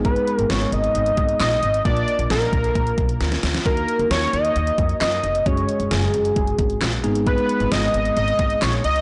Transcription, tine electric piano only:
\new Staff \with { instrumentName = "Tine electric piano" } { \time 4/4 \key aes \dorian \tempo 4 = 133 <aes ces' ees' aes'>2.~ <aes ces' ees' aes'>8 r8 | <bes d' f' bes'>1 | <bes ees' ges' bes'>1 | <aes des' ges' aes'>2.~ <aes des' ges' aes'>8 <aes ces' ees' aes'>8~ |
<aes ces' ees' aes'>2.~ <aes ces' ees' aes'>8 r8 | }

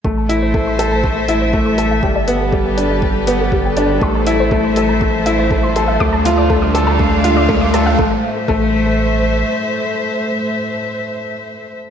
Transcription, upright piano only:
\new Staff \with { instrumentName = "Upright piano" } { \time 4/4 \key a \minor \tempo 4 = 121 a8 e'8 a8 a'8 a8 e'8 a8 a'8 | g8 b8 g8 d'8 g8 b8 g8 d'8 | a8 e'8 a8 a'8 a8 e'8 a8 a'8 | a8 f'8 a8 a'8 a8 f'8 a8 a'8 |
a8 r8 a8 r2 r8 | r1 | }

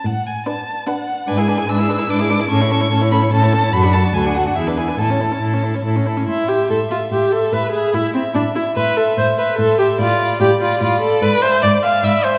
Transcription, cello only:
\new Staff \with { instrumentName = "Cello" } { \clef bass \time 3/4 \key a \major \tempo 4 = 146 a,4 r2 | gis,4 gis,4 gis,4 | a,4 a,4 a,4 | fis,4 d,4 e,4 |
a,4 a,4 a,4 | \key a \minor a,4 a,4 a,4 | a,4 a,4 a,4 | a,4 a,4 a,4 |
a,4 a,4 a,4 | gis,4 gis,4 gis,4 | }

